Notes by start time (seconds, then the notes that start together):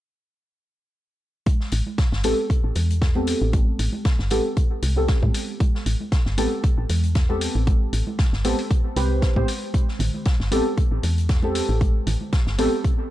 1.46 kick, closed hi-hat, high conga
1.60 snare
1.72 A1, closed hi-hat, open hi-hat
1.86 high conga
1.98 kick, snare, closed hi-hat
2.12 G1, snare
2.23 A1 B3 C4 G4 A4, closed hi-hat, open hi-hat, high conga
2.50 kick, closed hi-hat
2.64 A1
2.75 E2, closed hi-hat, open hi-hat, high conga
2.90 closed hi-hat
3.02 kick, snare, closed hi-hat
3.15 B3 C4 G4 A4, high conga
3.27 closed hi-hat, open hi-hat
3.42 A1
3.53 kick, closed hi-hat, high conga
3.79 A1, closed hi-hat, open hi-hat
3.93 high conga
4.05 kick, snare, closed hi-hat
4.19 G1, snare
4.30 A1 B3 C4 G4 A4, closed hi-hat, open hi-hat, high conga
4.57 kick, closed hi-hat
4.82 C2, closed hi-hat, open hi-hat, high conga
4.96 B3 C4 G4 A4
5.08 kick, snare, closed hi-hat
5.23 A2, kick, high conga
5.34 closed hi-hat, open hi-hat
5.60 kick, closed hi-hat, high conga
5.75 snare
5.86 A1, closed hi-hat, open hi-hat
6.00 high conga
6.12 kick, snare, closed hi-hat
6.25 G1, snare
6.38 A1 B3 C4 G4 A4, closed hi-hat, open hi-hat, high conga
6.64 kick, closed hi-hat
6.78 A1
6.89 E2, closed hi-hat, open hi-hat, high conga
7.04 closed hi-hat
7.15 kick, snare, closed hi-hat
7.29 B3 C4 G4 A4, high conga
7.41 closed hi-hat, open hi-hat
7.55 A1
7.67 kick, closed hi-hat, high conga
7.93 A1, closed hi-hat, open hi-hat
8.07 high conga
8.19 kick, snare, closed hi-hat
8.33 G1, snare
8.44 A1 B3 C4 G4 A4, closed hi-hat, open hi-hat, high conga
8.59 open hi-hat
8.71 kick, closed hi-hat
8.96 C2 C4 G4 B4 C5, closed hi-hat, open hi-hat, high conga
9.22 kick, snare, closed hi-hat
9.36 A2 B3 C4 G4 C5, kick, high conga
9.48 closed hi-hat, open hi-hat
9.74 kick, closed hi-hat, high conga
9.88 snare
9.99 A1, closed hi-hat, open hi-hat, low conga
10.14 high conga
10.25 kick, snare, closed hi-hat
10.40 G1, snare
10.51 A1 B3 C4 G4 A4, closed hi-hat, open hi-hat, high conga
10.77 kick, closed hi-hat
10.92 A1
11.03 E2, closed hi-hat, open hi-hat, high conga
11.18 closed hi-hat
11.29 kick, snare, closed hi-hat
11.43 B3 C4 G4 A4, high conga
11.55 closed hi-hat, open hi-hat
11.69 A1
11.81 kick, closed hi-hat, high conga
12.07 A1, closed hi-hat, open hi-hat, low conga
12.21 high conga
12.33 kick, snare, closed hi-hat
12.47 G1, snare
12.58 A1 B3 C4 G4 A4, closed hi-hat, open hi-hat, high conga
12.84 kick, closed hi-hat